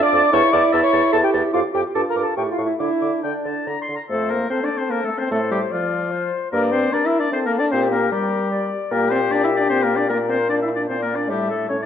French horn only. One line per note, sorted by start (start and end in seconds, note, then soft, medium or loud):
0.00 0.34 D4 loud
0.33 1.66 E4 loud
1.96 2.34 F4 medium
2.37 2.82 E4 medium
2.80 3.88 D4 medium
4.10 4.32 A3 medium
4.30 4.49 A#3 medium
4.50 4.63 C4 medium
4.64 4.70 D4 medium
4.77 4.92 C4 medium
4.90 5.04 A#3 medium
5.04 5.10 A3 medium
5.18 5.31 C4 medium
5.31 5.40 A3 medium
5.52 5.61 G3 medium
5.71 6.31 F3 medium
6.53 6.74 A#3 loud
6.72 6.94 C4 medium
6.92 7.07 D4 loud
7.06 7.21 E4 loud
7.20 7.32 D4 medium
7.32 7.48 C4 medium
7.46 7.61 A#3 loud
7.60 7.73 D4 loud
7.72 7.91 C4 loud
7.92 8.12 A#3 loud
8.12 8.70 G3 medium
8.92 9.10 A#3 medium
9.12 9.20 C4 medium
9.31 9.44 D4 loud
9.45 9.50 E4 loud
9.58 9.72 D4 loud
9.71 9.85 C4 medium
9.84 9.99 A#3 medium
9.97 10.09 D4 medium
10.10 10.19 A#3 medium
10.29 10.38 C4 medium
10.49 10.62 D4 loud
10.64 10.69 E4 medium
10.77 10.89 D4 medium
10.90 10.96 C4 medium
11.03 11.18 A#3 medium
11.16 11.32 D4 medium
11.30 11.52 G3 medium
11.50 11.69 A3 medium
11.70 11.76 C#4 medium